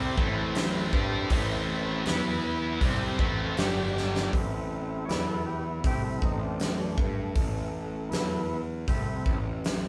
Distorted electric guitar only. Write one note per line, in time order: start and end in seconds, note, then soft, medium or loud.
0.00 0.16 C3 loud
0.00 0.17 G3 loud
0.00 0.17 C4 loud
0.17 0.92 A2 loud
0.17 0.92 E3 medium
0.17 0.92 A3 loud
0.92 1.29 G3 medium
0.92 1.30 D4 loud
0.92 1.30 G4 loud
1.31 2.05 A2 loud
1.31 2.05 E3 loud
1.31 2.05 A3 loud
2.06 2.80 E3 medium
2.06 2.81 B3 loud
2.06 2.81 E4 loud
2.81 3.18 C3 loud
2.81 3.18 G3 loud
2.81 3.19 C4 loud
3.19 3.56 A2 medium
3.19 3.56 E3 medium
3.19 3.56 A3 loud
3.58 4.32 G2 medium
3.58 4.32 D3 medium
3.58 4.32 G3 medium